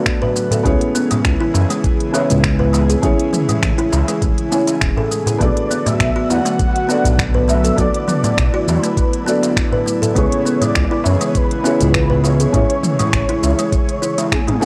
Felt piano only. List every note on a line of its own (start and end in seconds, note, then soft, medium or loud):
0.00 0.63 B3 medium
0.00 0.68 D4 medium
0.00 0.67 F#4 medium
0.00 0.67 A4 medium
0.00 0.67 D5 loud
0.63 2.09 B3 loud
0.63 2.10 C#4 medium
0.63 2.10 E4 medium
0.63 2.11 G#4 medium
0.63 2.11 C#5 loud
2.11 2.98 B3 medium
2.11 2.99 C#4 medium
2.11 2.99 E4 medium
2.11 3.00 G#4 medium
2.15 3.00 C#5 medium
3.02 4.48 C#4 medium
3.02 4.48 E4 medium
3.02 4.49 G#4 medium
3.02 4.49 C#5 loud
4.51 5.37 C#4 medium
4.51 5.37 E4 medium
4.51 5.38 C#5 medium
4.51 5.38 G#5 medium
5.38 6.85 B3 medium
5.38 6.85 D4 medium
5.38 6.86 F#4 medium
5.38 6.86 A4 medium
5.38 6.87 D5 loud
6.87 7.74 B3 medium
6.87 7.74 D4 medium
6.87 7.75 F#4 medium
6.87 7.75 A4 medium
6.91 7.76 D5 medium
7.76 9.22 B3 medium
7.76 9.23 D4 medium
7.76 9.23 F#4 medium
7.76 9.24 A4 medium
7.76 9.24 D5 loud
9.25 10.11 B3 medium
9.25 10.12 D4 medium
9.25 10.12 F#4 medium
9.25 10.13 A4 medium
9.29 10.14 D5 medium
10.14 11.61 C#3 medium
10.14 11.60 B3 medium
10.14 11.61 E4 medium
10.14 11.62 G#4 medium
10.14 11.62 B4 loud
11.63 12.49 B3 medium
11.63 12.50 C#4 medium
11.63 12.50 E4 medium
11.63 12.51 G#4 medium
11.67 12.51 C#5 medium
12.52 13.98 C#4 medium
12.52 13.99 E4 medium
12.52 13.99 G#4 medium
12.52 14.00 C#5 loud
14.60 14.65 A3 loud
14.60 14.65 C#4 medium
14.60 14.65 E4 medium
14.60 14.65 G#4 medium